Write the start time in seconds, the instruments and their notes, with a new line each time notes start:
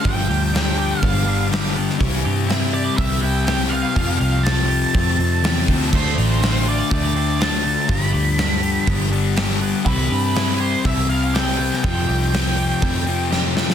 0.04 picked electric bass G1, distorted electric guitar G2 D3 G3, clean electric guitar F3, lead electric guitar G5, kick
0.29 picked electric bass D2, clean electric guitar G4, open hi-hat
0.53 distorted electric guitar G2 D3 G3, clean electric guitar D4, snare, open hi-hat
0.78 clean electric guitar G4, open hi-hat
1.01 picked electric bass G1, distorted electric guitar G2 D3 G3, clean electric guitar B3, lead electric guitar F5, kick, open hi-hat
1.25 distorted electric guitar D3 G3, clean electric guitar D4, open hi-hat
1.49 distorted electric guitar G2 D3 G3, clean electric guitar G4, open hi-hat
1.54 snare
1.66 snare
1.75 distorted electric guitar D3 G3, clean electric guitar B3, open hi-hat
1.90 snare
1.99 picked electric bass C2, distorted electric guitar C3 G3 C4, clean electric guitar E3, kick, open hi-hat
2.24 picked electric bass G2, clean electric guitar G4, open hi-hat
2.48 distorted electric guitar C3 G3 C4, clean electric guitar E4, snare, open hi-hat
2.73 clean electric guitar G4, lead electric guitar D5, open hi-hat
2.97 picked electric bass C2, distorted electric guitar C3 G3 C4, lead electric guitar E5, kick, open hi-hat
3.20 distorted electric guitar G3 C4, clean electric guitar E4, lead electric guitar G5, open hi-hat
3.45 distorted electric guitar C3 G3 C4, clean electric guitar G4, lead electric guitar G5, snare, open hi-hat
3.69 clean electric guitar B3, distorted electric guitar C4, lead electric guitar F5, open hi-hat
3.73 distorted electric guitar G3
3.95 distorted electric guitar F2 C3 F3, picked electric bass F2, clean electric guitar F3, kick, open hi-hat
4.18 picked electric bass C2, clean electric guitar G4, lead electric guitar F5, open hi-hat
4.43 distorted electric guitar F2 C3, clean electric guitar C4, lead electric guitar A5, snare, open hi-hat
4.48 distorted electric guitar F3
4.69 clean electric guitar G4, open hi-hat
4.94 distorted electric guitar F2 C3 F3, picked electric bass F2, clean electric guitar A3, kick, open hi-hat
5.19 picked electric bass F2, distorted electric guitar C3 F3, clean electric guitar C4, open hi-hat
5.44 picked electric bass E2, distorted electric guitar F2 C3 F3, clean electric guitar G4, snare, open hi-hat
5.68 picked electric bass D2, distorted electric guitar C3 F3, clean electric guitar A3, kick, open hi-hat
5.82 snare
5.92 picked electric bass D2, distorted electric guitar D3 A3 D4, clean electric guitar A3, lead electric guitar C5, kick, crash
6.17 picked electric bass A1, clean electric guitar F4, open hi-hat
6.41 distorted electric guitar D3 A3 D4, clean electric guitar C4, snare, open hi-hat
6.66 clean electric guitar F4, lead electric guitar D5, open hi-hat
6.90 picked electric bass D2, distorted electric guitar D3 A3 D4, clean electric guitar A3, lead electric guitar D5, kick
7.15 distorted electric guitar A3 D4, clean electric guitar C4, open hi-hat
7.40 distorted electric guitar D3 A3 D4, clean electric guitar F4, lead electric guitar A5, snare, open hi-hat
7.54 snare
7.64 clean electric guitar A3, distorted electric guitar A3 D4, open hi-hat
7.88 picked electric bass G1, distorted electric guitar G2 D3 G3, clean electric guitar F3, lead electric guitar B5, kick, open hi-hat
8.13 picked electric bass D2, clean electric guitar G4, open hi-hat
8.38 distorted electric guitar G2 D3 G3, clean electric guitar D4, snare, open hi-hat
8.62 clean electric guitar G4, open hi-hat
8.87 picked electric bass G1, distorted electric guitar G2 D3 G3, clean electric guitar B3, kick, open hi-hat
9.11 distorted electric guitar D3 G3, clean electric guitar D4, open hi-hat
9.36 distorted electric guitar G2 D3 G3, clean electric guitar G4, snare, open hi-hat
9.50 snare
9.60 distorted electric guitar D3 G3, clean electric guitar B3, open hi-hat
9.85 picked electric bass C2, distorted electric guitar C3 G3 C4, clean electric guitar E3, lead electric guitar B4, kick, open hi-hat
10.10 picked electric bass G2, clean electric guitar G4, open hi-hat
10.35 distorted electric guitar C3 G3 C4, clean electric guitar E4, snare, open hi-hat
10.60 clean electric guitar G4, lead electric guitar C5, open hi-hat
10.85 picked electric bass C2, distorted electric guitar C3 G3 C4, lead electric guitar E5, kick, open hi-hat
11.09 distorted electric guitar G3 C4, clean electric guitar E4, lead electric guitar F5, open hi-hat
11.34 distorted electric guitar C3 G3 C4, clean electric guitar G4, lead electric guitar G5, snare, open hi-hat
11.48 snare
11.59 distorted electric guitar G3 C4, clean electric guitar B3, open hi-hat
11.73 snare
11.83 distorted electric guitar F2 C3 F3, picked electric bass F2, clean electric guitar F3, lead electric guitar G5, kick
12.08 picked electric bass C2, clean electric guitar G4, open hi-hat
12.32 distorted electric guitar F2 C3 F3, clean electric guitar C4, snare, open hi-hat
12.56 clean electric guitar G4, open hi-hat
12.81 distorted electric guitar F2 C3 F3, picked electric bass F2, clean electric guitar A3, kick, open hi-hat
13.06 distorted electric guitar C3 F3, clean electric guitar C4, open hi-hat
13.31 distorted electric guitar F2 C3 F3, clean electric guitar G4, snare
13.56 distorted electric guitar C3 F3, clean electric guitar A3, snare
13.70 snare